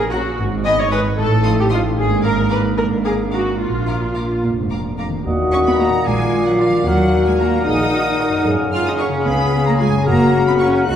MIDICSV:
0, 0, Header, 1, 11, 480
1, 0, Start_track
1, 0, Key_signature, -6, "minor"
1, 0, Tempo, 531915
1, 346, Time_signature, 6, 3, 24, 8
1, 2266, Tempo, 546448
1, 5146, Tempo, 534759
1, 9784, End_track
2, 0, Start_track
2, 0, Title_t, "Violin section"
2, 0, Program_c, 0, 48
2, 97, Note_on_c, 0, 82, 53
2, 169, Note_off_c, 0, 82, 0
2, 583, Note_on_c, 0, 87, 51
2, 655, Note_off_c, 0, 87, 0
2, 819, Note_on_c, 0, 87, 57
2, 891, Note_off_c, 0, 87, 0
2, 1299, Note_on_c, 0, 87, 63
2, 1371, Note_off_c, 0, 87, 0
2, 1540, Note_on_c, 0, 87, 64
2, 1612, Note_off_c, 0, 87, 0
2, 2018, Note_on_c, 0, 86, 53
2, 2090, Note_off_c, 0, 86, 0
2, 2250, Note_on_c, 0, 86, 56
2, 2321, Note_off_c, 0, 86, 0
2, 2737, Note_on_c, 0, 86, 51
2, 2808, Note_off_c, 0, 86, 0
2, 2978, Note_on_c, 0, 86, 46
2, 3048, Note_off_c, 0, 86, 0
2, 3468, Note_on_c, 0, 86, 41
2, 3539, Note_off_c, 0, 86, 0
2, 3711, Note_on_c, 0, 86, 44
2, 3781, Note_off_c, 0, 86, 0
2, 4191, Note_on_c, 0, 86, 44
2, 4261, Note_off_c, 0, 86, 0
2, 4430, Note_on_c, 0, 86, 39
2, 4501, Note_off_c, 0, 86, 0
2, 4919, Note_on_c, 0, 85, 72
2, 4965, Note_off_c, 0, 85, 0
2, 5034, Note_on_c, 0, 83, 65
2, 5145, Note_on_c, 0, 82, 75
2, 5146, Note_off_c, 0, 83, 0
2, 5382, Note_on_c, 0, 80, 78
2, 5386, Note_off_c, 0, 82, 0
2, 5735, Note_off_c, 0, 80, 0
2, 5749, Note_on_c, 0, 78, 62
2, 5796, Note_off_c, 0, 78, 0
2, 5878, Note_on_c, 0, 77, 67
2, 5950, Note_off_c, 0, 77, 0
2, 6113, Note_on_c, 0, 78, 64
2, 6461, Note_on_c, 0, 80, 64
2, 6465, Note_off_c, 0, 78, 0
2, 6587, Note_off_c, 0, 80, 0
2, 6595, Note_on_c, 0, 82, 70
2, 6834, Note_on_c, 0, 87, 82
2, 6836, Note_off_c, 0, 82, 0
2, 7536, Note_off_c, 0, 87, 0
2, 7787, Note_on_c, 0, 89, 68
2, 7898, Note_off_c, 0, 89, 0
2, 7901, Note_on_c, 0, 87, 57
2, 7950, Note_off_c, 0, 87, 0
2, 8015, Note_on_c, 0, 85, 66
2, 8087, Note_off_c, 0, 85, 0
2, 8256, Note_on_c, 0, 83, 70
2, 8609, Note_on_c, 0, 82, 63
2, 8611, Note_off_c, 0, 83, 0
2, 8726, Note_on_c, 0, 80, 67
2, 8735, Note_off_c, 0, 82, 0
2, 8967, Note_off_c, 0, 80, 0
2, 8971, Note_on_c, 0, 82, 69
2, 9329, Note_off_c, 0, 82, 0
2, 9334, Note_on_c, 0, 83, 66
2, 9384, Note_off_c, 0, 83, 0
2, 9453, Note_on_c, 0, 85, 68
2, 9524, Note_off_c, 0, 85, 0
2, 9690, Note_on_c, 0, 90, 78
2, 9784, Note_off_c, 0, 90, 0
2, 9784, End_track
3, 0, Start_track
3, 0, Title_t, "Violin section"
3, 0, Program_c, 1, 48
3, 98, Note_on_c, 1, 78, 63
3, 100, Note_off_c, 1, 78, 0
3, 100, Note_on_c, 1, 78, 61
3, 173, Note_off_c, 1, 78, 0
3, 580, Note_on_c, 1, 80, 61
3, 582, Note_on_c, 1, 83, 61
3, 652, Note_off_c, 1, 80, 0
3, 655, Note_off_c, 1, 83, 0
3, 826, Note_on_c, 1, 83, 52
3, 828, Note_on_c, 1, 80, 63
3, 898, Note_off_c, 1, 83, 0
3, 900, Note_off_c, 1, 80, 0
3, 1306, Note_on_c, 1, 77, 57
3, 1308, Note_on_c, 1, 84, 54
3, 1378, Note_off_c, 1, 77, 0
3, 1381, Note_off_c, 1, 84, 0
3, 1533, Note_on_c, 1, 84, 66
3, 1535, Note_on_c, 1, 77, 64
3, 1605, Note_off_c, 1, 84, 0
3, 1607, Note_off_c, 1, 77, 0
3, 2010, Note_on_c, 1, 77, 56
3, 2016, Note_on_c, 1, 82, 54
3, 2082, Note_off_c, 1, 77, 0
3, 2088, Note_off_c, 1, 82, 0
3, 2251, Note_on_c, 1, 77, 51
3, 2253, Note_on_c, 1, 82, 56
3, 2322, Note_off_c, 1, 77, 0
3, 2324, Note_off_c, 1, 82, 0
3, 2735, Note_on_c, 1, 77, 52
3, 2735, Note_on_c, 1, 82, 49
3, 2805, Note_off_c, 1, 77, 0
3, 2805, Note_off_c, 1, 82, 0
3, 2974, Note_on_c, 1, 77, 51
3, 2974, Note_on_c, 1, 82, 48
3, 3044, Note_off_c, 1, 77, 0
3, 3044, Note_off_c, 1, 82, 0
3, 3460, Note_on_c, 1, 77, 48
3, 3461, Note_on_c, 1, 82, 46
3, 3530, Note_off_c, 1, 77, 0
3, 3531, Note_off_c, 1, 82, 0
3, 3700, Note_on_c, 1, 82, 42
3, 3702, Note_on_c, 1, 77, 43
3, 3770, Note_off_c, 1, 82, 0
3, 3772, Note_off_c, 1, 77, 0
3, 4194, Note_on_c, 1, 82, 42
3, 4196, Note_on_c, 1, 77, 42
3, 4264, Note_off_c, 1, 82, 0
3, 4267, Note_off_c, 1, 77, 0
3, 4438, Note_on_c, 1, 77, 44
3, 4439, Note_on_c, 1, 82, 44
3, 4508, Note_off_c, 1, 77, 0
3, 4509, Note_off_c, 1, 82, 0
3, 4914, Note_on_c, 1, 85, 74
3, 4961, Note_off_c, 1, 85, 0
3, 5027, Note_on_c, 1, 83, 58
3, 5143, Note_off_c, 1, 83, 0
3, 5146, Note_on_c, 1, 82, 65
3, 5381, Note_off_c, 1, 82, 0
3, 5387, Note_on_c, 1, 80, 74
3, 5745, Note_off_c, 1, 80, 0
3, 5749, Note_on_c, 1, 78, 62
3, 5863, Note_on_c, 1, 77, 69
3, 5866, Note_off_c, 1, 78, 0
3, 6098, Note_off_c, 1, 77, 0
3, 6100, Note_on_c, 1, 78, 68
3, 6464, Note_on_c, 1, 80, 62
3, 6466, Note_off_c, 1, 78, 0
3, 6585, Note_on_c, 1, 82, 66
3, 6586, Note_off_c, 1, 80, 0
3, 6657, Note_off_c, 1, 82, 0
3, 6828, Note_on_c, 1, 87, 80
3, 7533, Note_off_c, 1, 87, 0
3, 7778, Note_on_c, 1, 89, 77
3, 7893, Note_off_c, 1, 89, 0
3, 7900, Note_on_c, 1, 87, 56
3, 7948, Note_off_c, 1, 87, 0
3, 8012, Note_on_c, 1, 85, 73
3, 8084, Note_off_c, 1, 85, 0
3, 8254, Note_on_c, 1, 83, 74
3, 8610, Note_off_c, 1, 83, 0
3, 8617, Note_on_c, 1, 82, 64
3, 8665, Note_off_c, 1, 82, 0
3, 8738, Note_on_c, 1, 80, 70
3, 8969, Note_on_c, 1, 82, 78
3, 8973, Note_off_c, 1, 80, 0
3, 9328, Note_off_c, 1, 82, 0
3, 9346, Note_on_c, 1, 83, 61
3, 9394, Note_off_c, 1, 83, 0
3, 9460, Note_on_c, 1, 85, 73
3, 9532, Note_off_c, 1, 85, 0
3, 9703, Note_on_c, 1, 90, 79
3, 9784, Note_off_c, 1, 90, 0
3, 9784, End_track
4, 0, Start_track
4, 0, Title_t, "Flute"
4, 0, Program_c, 2, 73
4, 4684, Note_on_c, 2, 78, 67
4, 5391, Note_on_c, 2, 77, 67
4, 5404, Note_off_c, 2, 78, 0
4, 6105, Note_on_c, 2, 78, 62
4, 6119, Note_off_c, 2, 77, 0
4, 8250, Note_off_c, 2, 78, 0
4, 8255, Note_on_c, 2, 77, 63
4, 8984, Note_on_c, 2, 78, 67
4, 8998, Note_off_c, 2, 77, 0
4, 9784, Note_off_c, 2, 78, 0
4, 9784, End_track
5, 0, Start_track
5, 0, Title_t, "Oboe"
5, 0, Program_c, 3, 68
5, 4684, Note_on_c, 3, 75, 60
5, 5395, Note_on_c, 3, 74, 61
5, 5408, Note_off_c, 3, 75, 0
5, 6121, Note_on_c, 3, 70, 66
5, 6135, Note_off_c, 3, 74, 0
5, 8265, Note_on_c, 3, 68, 63
5, 8278, Note_off_c, 3, 70, 0
5, 8976, Note_off_c, 3, 68, 0
5, 8981, Note_on_c, 3, 70, 72
5, 9784, Note_off_c, 3, 70, 0
5, 9784, End_track
6, 0, Start_track
6, 0, Title_t, "Viola section"
6, 0, Program_c, 4, 48
6, 108, Note_on_c, 4, 66, 71
6, 342, Note_off_c, 4, 66, 0
6, 583, Note_on_c, 4, 75, 87
6, 695, Note_off_c, 4, 75, 0
6, 717, Note_on_c, 4, 73, 82
6, 828, Note_on_c, 4, 71, 80
6, 830, Note_off_c, 4, 73, 0
6, 900, Note_off_c, 4, 71, 0
6, 1061, Note_on_c, 4, 69, 85
6, 1415, Note_off_c, 4, 69, 0
6, 1438, Note_on_c, 4, 67, 84
6, 1483, Note_off_c, 4, 67, 0
6, 1558, Note_on_c, 4, 65, 79
6, 1630, Note_off_c, 4, 65, 0
6, 1782, Note_on_c, 4, 68, 86
6, 2017, Note_off_c, 4, 68, 0
6, 2033, Note_on_c, 4, 70, 78
6, 2267, Note_off_c, 4, 70, 0
6, 2268, Note_on_c, 4, 71, 68
6, 2338, Note_off_c, 4, 71, 0
6, 2499, Note_on_c, 4, 70, 79
6, 2569, Note_off_c, 4, 70, 0
6, 2736, Note_on_c, 4, 68, 71
6, 2807, Note_off_c, 4, 68, 0
6, 2980, Note_on_c, 4, 66, 65
6, 3219, Note_off_c, 4, 66, 0
6, 3222, Note_on_c, 4, 65, 62
6, 3934, Note_off_c, 4, 65, 0
6, 5145, Note_on_c, 4, 66, 59
6, 5148, Note_on_c, 4, 75, 58
6, 5324, Note_off_c, 4, 66, 0
6, 5326, Note_off_c, 4, 75, 0
6, 5867, Note_on_c, 4, 65, 62
6, 5867, Note_on_c, 4, 74, 57
6, 6043, Note_off_c, 4, 65, 0
6, 6044, Note_off_c, 4, 74, 0
6, 6583, Note_on_c, 4, 66, 57
6, 6586, Note_on_c, 4, 70, 53
6, 6768, Note_off_c, 4, 66, 0
6, 6769, Note_off_c, 4, 70, 0
6, 7313, Note_on_c, 4, 70, 65
6, 7315, Note_on_c, 4, 66, 62
6, 7489, Note_off_c, 4, 70, 0
6, 7491, Note_off_c, 4, 66, 0
6, 8017, Note_on_c, 4, 70, 60
6, 8022, Note_on_c, 4, 66, 58
6, 8198, Note_off_c, 4, 70, 0
6, 8201, Note_off_c, 4, 66, 0
6, 8733, Note_on_c, 4, 65, 61
6, 8736, Note_on_c, 4, 68, 61
6, 8915, Note_off_c, 4, 65, 0
6, 8916, Note_off_c, 4, 68, 0
6, 9468, Note_on_c, 4, 66, 63
6, 9470, Note_on_c, 4, 70, 60
6, 9647, Note_off_c, 4, 66, 0
6, 9648, Note_off_c, 4, 70, 0
6, 9784, End_track
7, 0, Start_track
7, 0, Title_t, "French horn section"
7, 0, Program_c, 5, 60
7, 103, Note_on_c, 5, 61, 60
7, 110, Note_on_c, 5, 54, 51
7, 190, Note_off_c, 5, 61, 0
7, 195, Note_off_c, 5, 54, 0
7, 579, Note_on_c, 5, 63, 60
7, 583, Note_on_c, 5, 51, 59
7, 666, Note_off_c, 5, 63, 0
7, 670, Note_off_c, 5, 51, 0
7, 827, Note_on_c, 5, 51, 59
7, 829, Note_on_c, 5, 63, 58
7, 912, Note_off_c, 5, 51, 0
7, 914, Note_off_c, 5, 63, 0
7, 1302, Note_on_c, 5, 63, 59
7, 1303, Note_on_c, 5, 53, 57
7, 1389, Note_off_c, 5, 63, 0
7, 1390, Note_off_c, 5, 53, 0
7, 1546, Note_on_c, 5, 63, 61
7, 1552, Note_on_c, 5, 53, 57
7, 1631, Note_off_c, 5, 63, 0
7, 1636, Note_off_c, 5, 53, 0
7, 1781, Note_on_c, 5, 58, 63
7, 1786, Note_on_c, 5, 62, 64
7, 2470, Note_off_c, 5, 58, 0
7, 2472, Note_off_c, 5, 62, 0
7, 2506, Note_on_c, 5, 58, 54
7, 2507, Note_on_c, 5, 62, 59
7, 3209, Note_off_c, 5, 62, 0
7, 3212, Note_off_c, 5, 58, 0
7, 3220, Note_on_c, 5, 62, 51
7, 3225, Note_on_c, 5, 58, 55
7, 4407, Note_off_c, 5, 62, 0
7, 4410, Note_off_c, 5, 58, 0
7, 4668, Note_on_c, 5, 66, 75
7, 5348, Note_off_c, 5, 66, 0
7, 5391, Note_on_c, 5, 65, 73
7, 6091, Note_off_c, 5, 65, 0
7, 6105, Note_on_c, 5, 66, 67
7, 6820, Note_off_c, 5, 66, 0
7, 6825, Note_on_c, 5, 68, 62
7, 6935, Note_off_c, 5, 68, 0
7, 7063, Note_on_c, 5, 66, 60
7, 7173, Note_off_c, 5, 66, 0
7, 7306, Note_on_c, 5, 70, 70
7, 7542, Note_off_c, 5, 70, 0
7, 7542, Note_on_c, 5, 68, 81
7, 8947, Note_off_c, 5, 68, 0
7, 8984, Note_on_c, 5, 66, 76
7, 9695, Note_off_c, 5, 66, 0
7, 9704, Note_on_c, 5, 63, 60
7, 9784, Note_off_c, 5, 63, 0
7, 9784, End_track
8, 0, Start_track
8, 0, Title_t, "Harp"
8, 0, Program_c, 6, 46
8, 0, Note_on_c, 6, 46, 64
8, 0, Note_on_c, 6, 61, 53
8, 0, Note_on_c, 6, 66, 45
8, 98, Note_off_c, 6, 66, 0
8, 109, Note_on_c, 6, 66, 53
8, 345, Note_on_c, 6, 44, 60
8, 361, Note_off_c, 6, 46, 0
8, 363, Note_off_c, 6, 61, 0
8, 367, Note_off_c, 6, 66, 0
8, 587, Note_on_c, 6, 59, 55
8, 821, Note_on_c, 6, 63, 51
8, 831, Note_on_c, 6, 68, 58
8, 1062, Note_on_c, 6, 45, 66
8, 1083, Note_off_c, 6, 44, 0
8, 1084, Note_off_c, 6, 59, 0
8, 1085, Note_off_c, 6, 68, 0
8, 1298, Note_on_c, 6, 60, 57
8, 1528, Note_off_c, 6, 63, 0
8, 1539, Note_on_c, 6, 63, 53
8, 1544, Note_on_c, 6, 65, 53
8, 1782, Note_on_c, 6, 44, 65
8, 1798, Note_off_c, 6, 60, 0
8, 1799, Note_off_c, 6, 63, 0
8, 1800, Note_off_c, 6, 45, 0
8, 2027, Note_on_c, 6, 58, 49
8, 2265, Note_on_c, 6, 62, 47
8, 2502, Note_on_c, 6, 70, 55
8, 2729, Note_off_c, 6, 62, 0
8, 2740, Note_on_c, 6, 62, 52
8, 2973, Note_off_c, 6, 58, 0
8, 2984, Note_on_c, 6, 58, 40
8, 3231, Note_on_c, 6, 46, 50
8, 3246, Note_off_c, 6, 44, 0
8, 3453, Note_off_c, 6, 58, 0
8, 3464, Note_on_c, 6, 58, 39
8, 3698, Note_off_c, 6, 62, 0
8, 3708, Note_on_c, 6, 62, 39
8, 3944, Note_off_c, 6, 70, 0
8, 3954, Note_on_c, 6, 70, 46
8, 4187, Note_off_c, 6, 62, 0
8, 4198, Note_on_c, 6, 62, 43
8, 4434, Note_off_c, 6, 58, 0
8, 4444, Note_on_c, 6, 58, 38
8, 4525, Note_on_c, 6, 51, 57
8, 4555, Note_off_c, 6, 58, 0
8, 4565, Note_on_c, 6, 58, 49
8, 4603, Note_on_c, 6, 63, 48
8, 4644, Note_on_c, 6, 66, 47
8, 4693, Note_off_c, 6, 65, 0
8, 4695, Note_off_c, 6, 46, 0
8, 4695, Note_off_c, 6, 62, 0
8, 5234, Note_on_c, 6, 46, 60
8, 5262, Note_off_c, 6, 58, 0
8, 5273, Note_on_c, 6, 58, 46
8, 5316, Note_on_c, 6, 62, 46
8, 5329, Note_off_c, 6, 51, 0
8, 5345, Note_off_c, 6, 70, 0
8, 5356, Note_on_c, 6, 70, 50
8, 5369, Note_off_c, 6, 63, 0
8, 5390, Note_off_c, 6, 66, 0
8, 5946, Note_on_c, 6, 51, 51
8, 5973, Note_off_c, 6, 58, 0
8, 5984, Note_on_c, 6, 58, 45
8, 6026, Note_on_c, 6, 66, 44
8, 6046, Note_off_c, 6, 46, 0
8, 6058, Note_off_c, 6, 70, 0
8, 6069, Note_on_c, 6, 70, 45
8, 6087, Note_off_c, 6, 62, 0
8, 7390, Note_on_c, 6, 42, 52
8, 7421, Note_off_c, 6, 58, 0
8, 7432, Note_on_c, 6, 58, 45
8, 7461, Note_off_c, 6, 66, 0
8, 7472, Note_on_c, 6, 66, 42
8, 7490, Note_off_c, 6, 51, 0
8, 7504, Note_off_c, 6, 70, 0
8, 7515, Note_on_c, 6, 70, 46
8, 8098, Note_on_c, 6, 49, 56
8, 8138, Note_on_c, 6, 61, 49
8, 8176, Note_on_c, 6, 65, 48
8, 8202, Note_off_c, 6, 42, 0
8, 8223, Note_off_c, 6, 58, 0
8, 8243, Note_off_c, 6, 66, 0
8, 8264, Note_off_c, 6, 70, 0
8, 8816, Note_on_c, 6, 42, 53
8, 8845, Note_off_c, 6, 61, 0
8, 8855, Note_on_c, 6, 61, 42
8, 8901, Note_on_c, 6, 66, 49
8, 8916, Note_off_c, 6, 49, 0
8, 8938, Note_on_c, 6, 70, 47
8, 8956, Note_off_c, 6, 65, 0
8, 9784, Note_off_c, 6, 42, 0
8, 9784, Note_off_c, 6, 61, 0
8, 9784, Note_off_c, 6, 66, 0
8, 9784, Note_off_c, 6, 70, 0
8, 9784, End_track
9, 0, Start_track
9, 0, Title_t, "Cello section"
9, 0, Program_c, 7, 48
9, 0, Note_on_c, 7, 46, 68
9, 228, Note_off_c, 7, 46, 0
9, 355, Note_on_c, 7, 44, 82
9, 948, Note_off_c, 7, 44, 0
9, 1070, Note_on_c, 7, 45, 76
9, 1666, Note_off_c, 7, 45, 0
9, 1788, Note_on_c, 7, 44, 81
9, 2389, Note_off_c, 7, 44, 0
9, 2512, Note_on_c, 7, 44, 74
9, 3109, Note_off_c, 7, 44, 0
9, 3234, Note_on_c, 7, 46, 61
9, 3833, Note_off_c, 7, 46, 0
9, 3956, Note_on_c, 7, 46, 66
9, 4003, Note_off_c, 7, 46, 0
9, 4089, Note_on_c, 7, 44, 49
9, 4199, Note_on_c, 7, 42, 49
9, 4200, Note_off_c, 7, 44, 0
9, 4269, Note_off_c, 7, 42, 0
9, 4436, Note_on_c, 7, 41, 47
9, 4506, Note_off_c, 7, 41, 0
9, 4907, Note_on_c, 7, 61, 81
9, 4955, Note_off_c, 7, 61, 0
9, 5040, Note_on_c, 7, 59, 65
9, 5085, Note_off_c, 7, 59, 0
9, 5149, Note_on_c, 7, 58, 80
9, 5221, Note_off_c, 7, 58, 0
9, 5385, Note_on_c, 7, 56, 84
9, 5737, Note_off_c, 7, 56, 0
9, 5760, Note_on_c, 7, 54, 75
9, 5868, Note_on_c, 7, 53, 77
9, 5869, Note_off_c, 7, 54, 0
9, 6105, Note_off_c, 7, 53, 0
9, 6105, Note_on_c, 7, 54, 89
9, 6461, Note_off_c, 7, 54, 0
9, 6473, Note_on_c, 7, 56, 65
9, 6521, Note_off_c, 7, 56, 0
9, 6589, Note_on_c, 7, 58, 82
9, 6828, Note_off_c, 7, 58, 0
9, 6831, Note_on_c, 7, 63, 83
9, 7534, Note_off_c, 7, 63, 0
9, 7793, Note_on_c, 7, 65, 85
9, 7901, Note_off_c, 7, 65, 0
9, 7918, Note_on_c, 7, 63, 71
9, 8030, Note_on_c, 7, 61, 80
9, 8031, Note_off_c, 7, 63, 0
9, 8265, Note_off_c, 7, 61, 0
9, 8266, Note_on_c, 7, 59, 88
9, 8623, Note_off_c, 7, 59, 0
9, 8642, Note_on_c, 7, 58, 74
9, 8686, Note_off_c, 7, 58, 0
9, 8753, Note_on_c, 7, 56, 79
9, 8825, Note_off_c, 7, 56, 0
9, 8987, Note_on_c, 7, 58, 91
9, 9338, Note_off_c, 7, 58, 0
9, 9359, Note_on_c, 7, 59, 69
9, 9404, Note_off_c, 7, 59, 0
9, 9473, Note_on_c, 7, 61, 80
9, 9707, Note_off_c, 7, 61, 0
9, 9714, Note_on_c, 7, 66, 87
9, 9784, Note_off_c, 7, 66, 0
9, 9784, End_track
10, 0, Start_track
10, 0, Title_t, "Bassoon"
10, 0, Program_c, 8, 70
10, 4685, Note_on_c, 8, 46, 68
10, 7520, Note_off_c, 8, 46, 0
10, 7561, Note_on_c, 8, 49, 65
10, 9784, Note_off_c, 8, 49, 0
10, 9784, End_track
11, 0, Start_track
11, 0, Title_t, "Double bass section"
11, 0, Program_c, 10, 48
11, 0, Note_on_c, 10, 34, 69
11, 221, Note_off_c, 10, 34, 0
11, 346, Note_on_c, 10, 32, 67
11, 944, Note_off_c, 10, 32, 0
11, 1061, Note_on_c, 10, 33, 68
11, 1661, Note_off_c, 10, 33, 0
11, 1776, Note_on_c, 10, 32, 73
11, 2383, Note_off_c, 10, 32, 0
11, 2504, Note_on_c, 10, 32, 63
11, 3104, Note_off_c, 10, 32, 0
11, 3225, Note_on_c, 10, 34, 60
11, 3828, Note_off_c, 10, 34, 0
11, 3957, Note_on_c, 10, 29, 54
11, 4558, Note_off_c, 10, 29, 0
11, 4679, Note_on_c, 10, 39, 71
11, 5245, Note_off_c, 10, 39, 0
11, 5392, Note_on_c, 10, 34, 73
11, 5962, Note_off_c, 10, 34, 0
11, 6101, Note_on_c, 10, 39, 75
11, 6688, Note_off_c, 10, 39, 0
11, 6834, Note_on_c, 10, 34, 69
11, 7407, Note_off_c, 10, 34, 0
11, 7554, Note_on_c, 10, 42, 70
11, 8122, Note_off_c, 10, 42, 0
11, 8262, Note_on_c, 10, 37, 70
11, 8836, Note_off_c, 10, 37, 0
11, 8978, Note_on_c, 10, 30, 77
11, 9561, Note_off_c, 10, 30, 0
11, 9714, Note_on_c, 10, 37, 75
11, 9784, Note_off_c, 10, 37, 0
11, 9784, End_track
0, 0, End_of_file